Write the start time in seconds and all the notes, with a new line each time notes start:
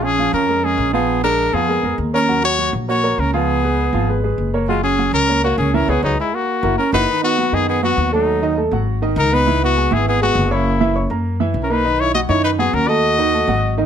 Already playing: A#1 F3 F4 F5
0.04 C#4 G#4
0.18 F3 F4 F5
0.33 F2 C#4 A#4
0.48 G#3 G#4 A#4
0.63 G#3 C#4 G#4 A#4
0.78 A#1
0.93 F3 B3 F4 G#4 F5
1.24 G#3 D4 G#4 A#4
1.53 F2 F3 B3 F4 G#4 F5
1.69 G#3 G#4 A#4
1.83 F2 G#3 G#4 A#4
1.98 D#2
2.13 A#3 C#4 A#4 C#5
2.28 F#3 F#4 F#5
2.44 F#4 C#5
2.58 F#3 F#4 F#5
2.73 A#1
2.88 A#3 F#4 A#4 C#5
3.03 A#3 A#4 C#5
3.18 C#2 C#4 A#4
3.33 F3 B3 F4 G#4 F5
3.63 G#3 G#4 B4
3.93 G#1 F3 F4 F5
4.09 G#3 G#4 B4
4.23 G#3 G#4 B4
4.38 F#1
4.54 A#3 A#4 C#5
4.68 F#3 G#3 F4 F#4 F#5
4.83 C#4 G#4
4.98 F#3 F#4 F#5
5.12 C#2 C#4 A#4
5.29 A#3 A#4 C#5
5.44 A#3 F#4 A#4 C#5
5.58 C#2 C#4 G#4
5.73 E3 C#4 E4 A#4 E5
5.88 C#2 B3 G#4 B4 C#5
6.03 C#2 F#3 D#4 G#4 B4 C#5
6.19 G#3 E4
6.34 A#3 F#4
6.63 F#1 E4 F#4 A#4
6.78 C#4 A#4
6.92 F#1 D#4 E4 F#4 A#4 B4
7.08 D#3 D#4 D#5
7.23 B3 F#4
7.38 F#3 F#4 F#5
7.52 F#2 D#3 B3 D#4 G#4 D#5
7.69 B3 G#4
7.83 F#3 B3 F#4 F#5
7.97 D#2
8.12 F#3 A3 D#4 A4 A5
8.42 D#3 D#4 D#5
8.57 A3 A4 A5
8.71 G#1 F#3 F#4 F#5
9.02 D#3 D#4 D#5
9.16 C#2 D#4 A#4
9.32 B3 D#4 B4 B5
9.47 E3 E4 E5
9.63 B3 F#4
9.76 G#3 G#4 G#5
9.91 G#1 E3 B3 E4 G#4 E5
10.08 B3 G#4
10.21 G#3 B3 F#4 G#4 G#5
10.35 F#1
10.51 A#3 C#4 E4 C#5 C#6
10.81 E3 E4 E5
10.95 C#4 C#5 C#6
11.10 F#2 A#3 A#4 A#5
11.40 E3 E4 E5
11.54 B1
11.62 C#4 A#4
11.70 A#3 D#4 A#4 B4 A#5
11.84 D#3 D#4 D#5
12.00 E4 C#5
12.14 F#3 F#4 D#5 F#5
12.29 F#2 D#3 D#4 E4 C#5 D#5
12.43 D#4 B4
12.58 F#3 B3 F#4 G#4 F#5
12.73 D#2 C#4 A#4
12.87 A3 F#4 A4 D#5 A5
13.18 D#3 D#4 D#5
13.33 A3 A4 A5
13.47 G#1 F#3 F#4 F#5
13.77 D#3 D#4 D#5